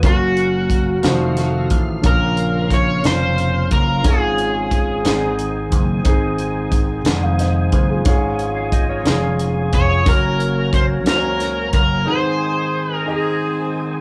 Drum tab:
HH |xxxxxx|xxxxxx|xxxxxx|xxxxxx|
SD |---oo-|---o--|---o--|---oo-|
BD |o-o--o|o-o--o|o-o--o|o-o--o|

HH |xxxxxx|xxxxxx|------|
SD |---o--|---oo-|------|
BD |o-o--o|o-o--o|------|